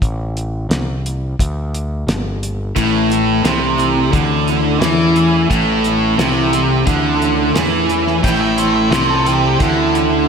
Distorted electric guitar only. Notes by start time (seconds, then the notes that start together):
2.76 A2
3.44 C3
4.12 D3
4.81 E3
5.50 A2
6.19 C3
6.87 D3
7.56 E3
8.23 A2
8.91 C3
9.60 D3